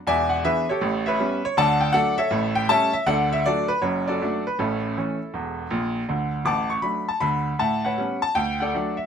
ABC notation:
X:1
M:4/4
L:1/8
Q:"Swing" 1/4=159
K:D
V:1 name="Grand piano"
[de^g] f [^GBe] [=GAc]2 [Bce]2 c | [dfa] g [Adf] [Ace]2 g [cea] e | [Adf] e [FAd] B c [FAd]2 B | [CEA]6- [CEA] z |
z2 [fad'] c' b a b2 | [efa] [Bcf]2 a g [Adf]2 e |]
V:2 name="Grand piano" clef=bass
[E,,,E,,]2 [E,B,D]2 [A,,,A,,]2 [G,B,C]2 | [D,,D,]2 [F,A,D]2 [A,,,A,,]2 [G,A,C]2 | [D,,D,]2 [F,A,D]2 [F,,,F,,]2 [F,A,D]2 | [A,,,A,,]2 [E,A,C]2 [E,,,E,,]2 [_B,,,_B,,]2 |
[D,,D,]2 [A,,,A,,]2 [F,A,D]2 [D,,D,]2 | A,,2 [G,B,C]2 D,,2 [F,A,D]2 |]